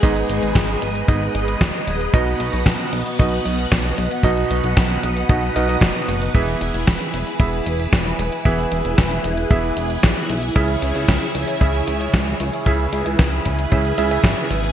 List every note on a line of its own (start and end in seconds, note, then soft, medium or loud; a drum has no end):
0.00 0.24 G#1 medium
0.00 1.05 G#2 medium
0.00 2.10 G#3 medium
0.00 1.05 B3 medium
0.00 1.05 D#4 medium
0.00 2.10 G#4 medium
0.00 1.05 G#4 medium
0.00 6.31 B4 medium
0.00 6.31 D#5 medium
0.00 1.05 D#5 medium
0.00 kick loud
0.00 closed hi-hat medium
0.16 closed hi-hat soft
0.29 0.40 G#1 medium
0.29 closed hi-hat medium
0.43 0.53 G#1 loud
0.43 closed hi-hat medium
0.55 0.76 G#1 medium
0.55 kick loud
0.55 snare loud
0.55 closed hi-hat medium
0.69 closed hi-hat soft
0.82 1.03 G#1 loud
0.82 closed hi-hat medium
0.95 closed hi-hat medium
1.08 1.29 G#1 loud
1.08 2.11 G#2 medium
1.08 2.11 B3 medium
1.08 2.11 D#4 medium
1.08 2.11 G#4 medium
1.08 2.11 D#5 medium
1.08 kick loud
1.08 closed hi-hat medium
1.22 closed hi-hat soft
1.35 1.56 G#1 loud
1.35 closed hi-hat medium
1.48 closed hi-hat medium
1.61 1.71 D#1 medium
1.61 kick loud
1.61 snare loud
1.61 closed hi-hat medium
1.74 closed hi-hat soft
1.87 2.08 D#1 medium
1.87 closed hi-hat medium
2.01 closed hi-hat medium
2.14 2.35 B1 loud
2.14 3.16 B2 medium
2.14 6.31 B3 medium
2.14 3.16 B3 medium
2.14 3.16 D#4 medium
2.14 3.16 F#4 medium
2.14 3.16 D#5 loud
2.14 6.31 F#5 medium
2.14 kick loud
2.14 closed hi-hat soft
2.27 closed hi-hat soft
2.40 2.51 B1 medium
2.40 closed hi-hat medium
2.53 2.64 B1 medium
2.53 closed hi-hat soft
2.66 2.77 B1 medium
2.66 kick loud
2.66 snare loud
2.66 closed hi-hat soft
2.80 closed hi-hat soft
2.93 3.03 B1 medium
2.93 closed hi-hat medium
3.06 closed hi-hat soft
3.19 3.40 B1 medium
3.19 4.21 B2 medium
3.19 4.21 B3 medium
3.19 4.21 D#4 medium
3.19 4.21 F#4 medium
3.19 4.21 D#5 medium
3.19 kick loud
3.19 closed hi-hat soft
3.32 closed hi-hat soft
3.45 3.66 B1 medium
3.45 closed hi-hat medium
3.59 closed hi-hat medium
3.72 3.93 B1 medium
3.72 kick loud
3.72 snare loud
3.72 closed hi-hat soft
3.85 closed hi-hat soft
3.98 4.08 B1 medium
3.98 closed hi-hat medium
4.11 closed hi-hat soft
4.23 4.45 B1 medium
4.23 5.26 B2 medium
4.23 5.26 B3 medium
4.23 5.26 D#4 medium
4.23 5.26 F#4 medium
4.23 5.26 D#5 loud
4.23 kick loud
4.23 closed hi-hat soft
4.37 closed hi-hat soft
4.51 4.61 B1 loud
4.51 closed hi-hat medium
4.64 4.74 B1 loud
4.64 closed hi-hat soft
4.77 4.98 B1 medium
4.77 kick loud
4.77 snare loud
4.77 closed hi-hat soft
4.90 closed hi-hat soft
5.03 5.24 B1 medium
5.03 closed hi-hat medium
5.16 closed hi-hat soft
5.29 5.50 B1 loud
5.29 5.53 B2 medium
5.29 5.53 B3 medium
5.29 5.53 D#4 medium
5.29 5.53 F#4 medium
5.29 5.53 D#5 medium
5.29 kick loud
5.29 closed hi-hat soft
5.43 closed hi-hat soft
5.56 5.77 B1 loud
5.56 5.66 B2 medium
5.56 5.66 B3 medium
5.56 5.66 D#4 medium
5.56 5.66 F#4 medium
5.56 5.66 D#5 medium
5.56 closed hi-hat medium
5.69 6.32 B2 medium
5.69 6.32 B3 medium
5.69 6.32 D#4 medium
5.69 6.32 F#4 medium
5.69 6.32 D#5 medium
5.69 closed hi-hat soft
5.81 5.92 F#1 medium
5.81 kick loud
5.81 snare loud
5.81 closed hi-hat soft
5.95 closed hi-hat soft
6.08 6.29 F#1 medium
6.08 closed hi-hat medium
6.22 closed hi-hat soft
6.35 6.56 E1 loud
6.35 7.37 E3 medium
6.35 7.37 B3 medium
6.35 14.72 E4 medium
6.35 7.37 E4 medium
6.35 14.72 G#4 medium
6.35 7.37 G#4 medium
6.35 10.52 B4 medium
6.35 7.37 E5 loud
6.35 kick loud
6.35 closed hi-hat soft
6.48 closed hi-hat soft
6.61 6.72 E1 medium
6.61 closed hi-hat medium
6.74 6.85 E1 medium
6.74 closed hi-hat soft
6.87 6.98 E1 medium
6.87 kick loud
6.87 snare loud
6.87 closed hi-hat soft
7.01 closed hi-hat soft
7.14 7.24 E1 medium
7.14 closed hi-hat medium
7.27 closed hi-hat soft
7.40 7.61 E1 medium
7.40 8.42 E3 medium
7.40 8.42 B3 medium
7.40 8.42 E4 medium
7.40 8.42 G#4 medium
7.40 8.42 E5 medium
7.40 kick loud
7.40 closed hi-hat soft
7.53 closed hi-hat soft
7.66 7.87 E1 medium
7.66 closed hi-hat medium
7.79 closed hi-hat soft
7.93 8.14 E1 medium
7.93 kick loud
7.93 snare loud
7.93 closed hi-hat medium
8.06 closed hi-hat soft
8.19 8.29 E1 medium
8.19 closed hi-hat medium
8.32 closed hi-hat soft
8.45 8.66 E1 medium
8.45 9.47 E3 medium
8.45 9.47 B3 medium
8.45 9.47 E4 medium
8.45 9.47 G#4 medium
8.45 9.47 E5 loud
8.45 kick loud
8.45 closed hi-hat medium
8.58 closed hi-hat soft
8.72 8.82 E1 medium
8.72 closed hi-hat medium
8.85 8.95 E1 loud
8.85 closed hi-hat soft
8.98 9.19 E1 medium
8.98 kick loud
8.98 snare loud
8.98 closed hi-hat soft
9.11 closed hi-hat soft
9.24 9.45 E1 loud
9.24 closed hi-hat medium
9.37 closed hi-hat medium
9.51 9.72 E1 medium
9.51 10.53 E3 medium
9.51 10.53 B3 medium
9.51 10.53 E4 medium
9.51 10.53 G#4 medium
9.51 10.53 E5 medium
9.51 kick loud
9.51 closed hi-hat soft
9.64 closed hi-hat soft
9.77 9.98 E1 medium
9.77 closed hi-hat medium
9.90 closed hi-hat medium
10.03 10.14 B1 medium
10.03 kick loud
10.03 snare loud
10.03 closed hi-hat medium
10.16 closed hi-hat soft
10.30 10.50 B1 medium
10.30 closed hi-hat medium
10.43 closed hi-hat medium
10.56 10.77 C#2 loud
10.56 11.58 C#3 medium
10.56 11.58 C#4 medium
10.56 11.58 E4 medium
10.56 11.58 G#4 medium
10.56 12.64 C#5 medium
10.56 11.58 E5 loud
10.56 kick loud
10.56 closed hi-hat medium
10.69 closed hi-hat soft
10.82 10.93 C#2 medium
10.82 closed hi-hat medium
10.95 11.06 C#2 medium
10.95 closed hi-hat medium
11.08 11.19 C#2 medium
11.08 kick loud
11.08 snare loud
11.08 closed hi-hat medium
11.22 closed hi-hat soft
11.35 11.45 C#2 medium
11.35 closed hi-hat medium
11.48 closed hi-hat medium
11.61 11.82 C#2 medium
11.61 12.63 C#3 medium
11.61 12.63 C#4 medium
11.61 12.63 E4 medium
11.61 12.63 G#4 medium
11.61 12.63 E5 medium
11.61 kick medium
11.61 closed hi-hat medium
11.74 closed hi-hat soft
11.87 12.08 C#2 medium
11.87 closed hi-hat medium
12.01 closed hi-hat medium
12.14 12.35 C#2 medium
12.14 kick loud
12.14 snare loud
12.14 closed hi-hat medium
12.27 closed hi-hat soft
12.40 12.50 C#2 loud
12.40 closed hi-hat medium
12.53 closed hi-hat medium
12.66 12.87 C#2 medium
12.66 13.68 C#3 medium
12.66 13.68 C#4 medium
12.66 13.68 E4 medium
12.66 13.68 G#4 medium
12.66 14.72 B4 medium
12.66 13.68 E5 loud
12.66 kick loud
12.66 closed hi-hat medium
12.80 closed hi-hat soft
12.93 13.03 C#2 medium
12.93 closed hi-hat medium
13.06 13.16 C#2 loud
13.06 closed hi-hat medium
13.19 13.40 C#2 medium
13.19 kick loud
13.19 snare loud
13.19 closed hi-hat medium
13.32 closed hi-hat soft
13.45 13.67 C#2 loud
13.45 kick medium
13.45 closed hi-hat medium
13.59 closed hi-hat medium
13.72 13.93 C#2 medium
13.72 13.95 C#3 medium
13.72 13.95 C#4 medium
13.72 13.95 E4 medium
13.72 13.95 G#4 medium
13.72 13.95 E5 medium
13.72 kick loud
13.72 closed hi-hat medium
13.85 closed hi-hat soft
13.98 14.19 C#2 loud
13.98 14.08 C#3 medium
13.98 14.08 C#4 medium
13.98 14.08 E4 medium
13.98 14.08 G#4 medium
13.98 14.08 E5 medium
13.98 closed hi-hat medium
14.11 14.72 C#3 medium
14.11 14.72 C#4 medium
14.11 14.72 E4 medium
14.11 14.72 G#4 medium
14.11 14.72 E5 medium
14.11 closed hi-hat medium
14.24 14.34 G#1 medium
14.24 kick loud
14.24 snare loud
14.24 closed hi-hat medium
14.37 closed hi-hat soft
14.51 14.71 G#1 medium
14.51 closed hi-hat medium
14.64 closed hi-hat medium